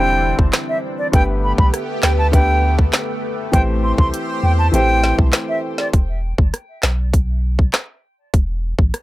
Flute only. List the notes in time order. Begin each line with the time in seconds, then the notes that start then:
Already playing: G5
0.69 E5
0.98 D5
1.14 G5
1.44 B5
1.59 B5
2.04 G5
2.18 A5
2.33 G5
3.53 G5
3.83 C6
3.98 C6
4.43 G5
4.58 A5
4.74 G5
5.49 E5
5.79 D5